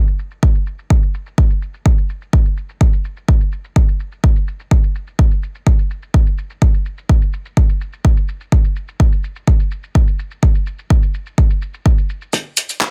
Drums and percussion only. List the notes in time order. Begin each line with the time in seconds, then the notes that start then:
0.07 shaker
0.19 shaker
0.31 shaker
0.43 kick, shaker
0.55 shaker
0.67 shaker
0.79 shaker
0.90 kick, shaker
1.03 shaker
1.14 shaker
1.26 shaker
1.38 kick, shaker
1.50 shaker
1.62 shaker
1.74 shaker
1.86 kick, shaker
1.98 shaker
2.09 shaker
2.22 shaker
2.33 kick, shaker
2.45 shaker
2.57 shaker
2.69 shaker
2.81 kick, shaker
2.93 shaker
3.05 shaker
3.17 shaker
3.28 kick, shaker
3.41 shaker
3.52 shaker
3.64 shaker
3.76 kick, shaker
3.88 shaker
4.00 shaker
4.12 shaker
4.24 kick, shaker
4.36 shaker
4.48 shaker
4.60 shaker
4.71 kick, shaker
4.83 shaker
4.95 shaker
5.07 shaker
5.19 kick, shaker
5.31 shaker
5.43 shaker
5.55 shaker
5.67 kick, shaker
5.79 shaker
5.90 shaker
6.03 shaker
6.14 kick, shaker
6.26 shaker
6.38 shaker
6.50 shaker
6.62 kick, shaker
6.74 shaker
6.86 shaker
6.98 shaker
7.09 kick, shaker
7.22 shaker
7.33 shaker
7.45 shaker
7.57 kick, shaker
7.69 shaker
7.81 shaker
7.93 shaker
8.05 kick, shaker
8.17 shaker
8.28 shaker
8.41 shaker
8.52 kick, shaker
8.64 shaker
8.76 shaker
8.88 shaker
9.00 kick, shaker
9.12 shaker
9.24 shaker
9.36 shaker
9.47 kick, shaker
9.60 shaker
9.71 shaker
9.83 shaker
9.95 kick, shaker
10.07 shaker
10.19 shaker
10.31 shaker
10.43 kick, shaker
10.55 shaker
10.67 shaker
10.79 shaker
10.90 kick, shaker
11.03 shaker
11.14 shaker
11.26 shaker
11.38 kick, shaker
11.50 shaker
11.62 shaker
11.74 shaker
11.86 kick, shaker
11.98 shaker
12.09 shaker
12.22 shaker
12.33 kick, closed hi-hat, shaker
12.57 closed hi-hat, open hi-hat, shaker
12.69 closed hi-hat, shaker
12.81 kick, snare, clap, closed hi-hat, shaker